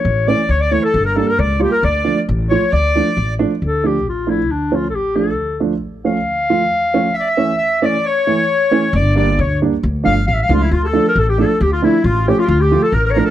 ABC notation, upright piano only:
X:1
M:2/4
L:1/16
Q:1/4=135
K:Dm
V:1 name="Upright piano"
z2 [E,A,^C] z3 [E,A,E] z | z2 [G,B,D] z3 [G,B,F] z | z2 [F,A,D] z3 [F,A,F] z | z2 [F,A,D] z3 [F,A,D] z |
z2 [F,A,D] z3 [F,A,D] z | z2 [F,A,^C] z3 [F,A,D] z | z2 [F,A,D] z3 [F,A,^C] z | z2 [F,A,F] z3 [F,A,^C] z |
z2 [E,A,^C] z3 [E,A,C] z | z2 [E,A,E] z3 [E,A,^C] z | z2 [G,B,D] z3 [G,B,D] z | z2 [F,A,D] z3 [F,A,D] z |
z2 [F,A,D] z3 [F,A,D] z | z2 [F,A,D] z3 [F,A,^C] z | z2 [F,A,F] z3 [F,A,D] z |]